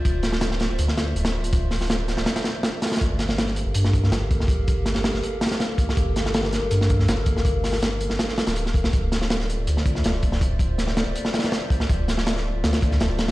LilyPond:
<<
  \new Staff \with { instrumentName = "Ambient pad" } { \time 4/4 \key g \minor \tempo 4 = 162 <f' c'' d'' e''>1~ | <f' c'' d'' e''>1 | <g' a' bes' f''>1~ | <g' a' bes' f''>1~ |
<g' a' bes' f''>1~ | <g' a' bes' f''>1 | <f' c'' d'' e''>1~ | <f' c'' d'' e''>1~ |
<f' c'' d'' e''>1 | }
  \new Staff \with { instrumentName = "Sub bass" } { \clef bass \time 4/4 \key g \minor d,,4.~ d,,16 d,,16 d,4 d,,4~ | d,,4.~ d,,16 d,,16 r2 | g,,4.~ g,,16 g,,16 g,4 g,,4~ | g,,4.~ g,,16 g,,16 r2 |
g,,4.~ g,,16 g,,16 g,4 g,,4~ | g,,4.~ g,,16 g,,16 r8. d,,8. f,,8 | d,,4.~ d,,16 d,,16 d,4 d,,4~ | d,,4.~ d,,16 d,,16 r2 |
d,,4.~ d,,16 d,,16 d,4 d,,4 | }
  \new DrumStaff \with { instrumentName = "Drums" } \drummode { \time 4/4 <hh bd>8 <hh sn>16 sn16 <hh sn>16 sn16 <hh sn>8 hh16 sn16 <hh sn>8 hh16 <hh sn>8 hh16 | <hh bd>8 <hho sn>16 sn16 <hh sn>8 <hh sn>16 sn16 <hh sn>16 <hh sn>16 <hh sn>8 <hh sn>8 <hh sn>32 <hh sn>32 <hh sn>32 <hh sn>32 | <hh bd>8 <hh sn>16 sn16 <hh sn>16 sn16 hh8 hh16 sn16 <hh bd>16 sn16 <hh sn>8 <hh bd>16 sn16 | <hh bd>8 <hh bd>8 <hh sn>16 sn16 <hh sn>16 sn16 hh8 <hh sn>32 <hh sn>32 <hh sn>16 <hh sn>8 <hh bd>16 sn16 |
<hh bd>8 <hh sn>16 sn16 <hh sn>16 sn16 <hh sn>8 hh16 sn16 <hh bd>16 sn16 <hh sn>8 <hh bd>16 sn16 | <hh bd>8 <hho sn>16 sn16 <hh sn>8 hh16 sn16 <hh sn>16 sn16 <hh sn>16 <hh sn>16 hh16 sn16 <hh bd>16 sn16 | <hh bd>8 <hh sn>16 sn16 <hh sn>16 sn16 hh8 hh16 sn16 <hh bd>16 sn16 <hh sn>8 <hh bd>16 sn16 | <hh bd>8 <hh bd>8 <hh sn>16 sn16 <hh sn>8 hh16 sn16 <hh sn>32 <hh sn>32 <hh sn>16 <hh sn>8 <hh bd>16 sn16 |
<hh bd>8 <hh sn>16 sn16 <hh sn>16 sn8. <hh sn>16 <hh sn>16 <hh bd>16 sn16 <hh sn>8 <hh sn>8 | }
>>